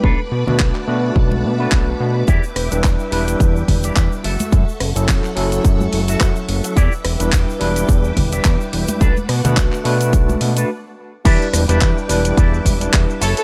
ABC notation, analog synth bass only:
X:1
M:4/4
L:1/16
Q:"Swing 16ths" 1/4=107
K:Edor
V:1 name="Analog synth bass" clef=bass
B,,, z B,, B,, B,,, z B,,2 B,,,2 B,,2 B,,,2 B,,2 | E,, z E,,, E,,, E,, z E,,,2 E,,2 E,,,2 E,, z F,,, z | F,, z F,,, F,,, F,, z F,,,2 F,,2 F,,,2 F,, z F,,, z | E,, z E,,, E,,, E,, z E,,,2 E,,2 E,,,2 E,, z E,,, z |
B,,, z B,, B,, B,,, z B,,2 B,,,2 B,,2 z4 | E,, z E,,, E,,, E,, z E,,,2 E,,2 E,,,2 E,, z F,,, z |]